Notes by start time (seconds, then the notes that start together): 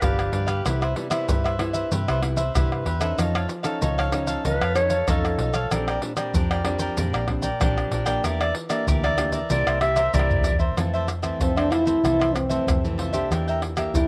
0.01 G1 D3 F3 B3 D4 G4 B4 F5, pandeiro, tamborim, maracas, surdo
0.19 pandeiro, tamborim, maracas
0.32 G2 D4 G4 B4 F5, pandeiro
0.46 G4 B4 F5, pandeiro, tamborim, maracas
0.65 C2 C3 G3 B3 E4 G4 B4 C5 E5, pandeiro, tamborim, maracas, surdo
0.81 B4 C5 E5, pandeiro, tamborim, maracas
0.96 G3 B3 E4, muted cavaquinho stroke, pandeiro
1.10 G3 B3 E4 B4 C5 E5, pandeiro, tamborim, maracas
1.28 G2 G4 B4 C5 E5, pandeiro, maracas, surdo
1.44 B4 C5 E5, pandeiro, tamborim, maracas
1.59 G3 B3 E4, pandeiro, tamborim
1.73 B4 C5 E5, pandeiro, maracas
1.92 G2 C3 G4 B4 C5 E5, pandeiro, maracas, surdo
2.08 C2 G3 B3 E4 B4 C5 E5, pandeiro, tamborim, maracas
2.22 G3 B3 E4, muted cavaquinho stroke, pandeiro, tamborim
2.37 B4 C5 E5, pandeiro, maracas
2.54 C2 G2 G3 B3 E4 G4 B4 C5 E5, pandeiro, tamborim, maracas, surdo
2.72 pandeiro, tamborim, maracas
2.86 E2 G4 B4 C5 E5, pandeiro
3.00 C#4 D#4 A4 B4 C5 E5, pandeiro, tamborim, maracas
3.18 F2 F3 D#4 A4 C#5 F5, pandeiro, tamborim, maracas, surdo
3.35 A4 C#5 F5, pandeiro, tamborim, maracas
3.49 muted cavaquinho stroke, pandeiro, maracas
3.63 C#4 D#4 A4 C#5 F5, pandeiro, tamborim, maracas
3.81 C#2 F3 D#4 A4 C#5 F5, pandeiro, maracas, surdo
3.98 A4 C#5 F5, pandeiro, tamborim, maracas
4.12 C#4 D#4 A4, pandeiro, tamborim, maracas
4.27 A4 C#5 F5, pandeiro, maracas
4.45 C#2 F3 D#4 A4 B4 C#5 F5, pandeiro, maracas, surdo
4.61 F2 A4 C#5 F5, pandeiro, tamborim, maracas
4.75 C#4 D#4 A4 C#5, muted cavaquinho stroke, pandeiro, tamborim, maracas
4.90 A4 C#5 F5, pandeiro, maracas
5.08 F2 F3 C#4 D#4 A4 C#5 F5, pandeiro, tamborim, maracas, surdo
5.25 pandeiro, tamborim, maracas
5.38 B1 D#4 A4 C#5 F5, pandeiro
5.54 A4 C#5 F5, pandeiro, tamborim, maracas
5.71 A#1 A#2 G3 C4 D4 A#4 D5 G5, pandeiro, tamborim, maracas, surdo
5.88 A#4 D5 G5, pandeiro, tamborim, maracas
6.02 G3 C4 D4, muted cavaquinho stroke, pandeiro
6.17 G3 C4 D4 A#4 D5 G5, pandeiro, tamborim, maracas
6.34 F2 F3 D4 A#4 D5 G5, pandeiro, maracas, surdo
6.51 A#4 D5 G5, pandeiro, tamborim, maracas
6.65 G3 C4 D4, pandeiro, tamborim
6.80 A#4 D5 G5, pandeiro, maracas
6.97 F2 A#2 D4 A#4 D5 G5, pandeiro, maracas, surdo
7.13 A#1 A#4 D5 G5, pandeiro, tamborim, maracas
7.28 G3 C4 D4, muted cavaquinho stroke, pandeiro, tamborim, surdo
7.42 A#4 D5 G5, pandeiro, maracas
7.60 A#1 F3 G3 C4 D4 A#4 D5 G5, pandeiro, tamborim, maracas, surdo
7.78 pandeiro, tamborim, maracas
7.91 A#1 D4 A#4 D5 G5, pandeiro
8.06 A#3 D4 G4 A#4 D5 G5, pandeiro, tamborim, maracas
8.24 E2 E3 G4 A#4 D5 E5, pandeiro, tamborim, maracas, surdo
8.40 A#4 D5 E5, pandeiro, tamborim, maracas
8.55 muted cavaquinho stroke, pandeiro
8.69 A#3 D4 G4 A#4 D5 E5, pandeiro, tamborim, maracas
8.87 D2 E3 G4 A#4 D5 E5, pandeiro, maracas, surdo
9.04 A#4 D5 E5, pandeiro, tamborim, maracas
9.18 A#3 D4 G4, pandeiro, tamborim, maracas
9.32 A#4 D5 E5, pandeiro, maracas
9.50 C2 C3 A#3 E4 G4 A#4 C5 D5 E5, pandeiro, maracas, surdo
9.67 C2 A#4 C5 E5, pandeiro, tamborim, maracas
9.81 A#3 E4 G4 E5, muted cavaquinho stroke, pandeiro, tamborim
9.96 A#4 C5 E5, pandeiro, tamborim, maracas
10.13 C2 G2 A#3 E4 G4 A#4 C5 D5 E5, pandeiro, maracas, surdo
10.19 tamborim
10.30 surdo, pandeiro, maracas
10.40 surdo
10.44 E2 E4 A#4 C5 E5, pandeiro, maracas
10.50 surdo
10.59 A#4 C5 E5, pandeiro, maracas, surdo
10.72 surdo
10.77 F2 E3 A3 C4 F4 A4 C5 E5, pandeiro, tamborim, maracas, surdo
10.94 A4 C5 E5, pandeiro, maracas
11.08 muted cavaquinho stroke, pandeiro, tamborim, maracas
11.23 E3 A3 C4 A4 C5 E5, pandeiro, tamborim, maracas, surdo
11.40 F2 C3 C4 F4 A4 C5 E5, pandeiro, maracas, surdo
11.56 E3 A3 C4 D4 A4 C5 E5, pandeiro, tamborim, maracas
11.70 E4 F4 A4 C5 E5, pandeiro, tamborim, surdo
11.85 E3 A3 C4 A4 C5 E5, pandeiro, maracas, surdo
12.03 C2 F2 E3 A3 C4 F4 A4 C5 E5, pandeiro, tamborim, maracas, surdo
12.19 A4 C5 E5, pandeiro, tamborim, maracas
12.34 C4, muted cavaquinho stroke, pandeiro, tamborim, maracas, surdo
12.49 E3 A3 C4 A4 C5 E5, pandeiro, maracas
12.67 F2 C3, pandeiro, tamborim, maracas, surdo
12.84 E3 A3 C4, pandeiro, maracas
12.98 F4 A4 C5 E5, pandeiro
13.13 A#3 D4 G4 A4 C5 E5, pandeiro, maracas, surdo
13.30 E2 E3 D4 A#4 E5 G5, pandeiro, tamborim, maracas, surdo
13.48 A#4 E5 G5, pandeiro, maracas
13.62 muted cavaquinho stroke, pandeiro, tamborim
13.77 A#3 D4 G4 A#4 E5 G5, pandeiro, tamborim, maracas, surdo
13.94 E2 E3 D4 E4 A#4 E5 G5, pandeiro, maracas, surdo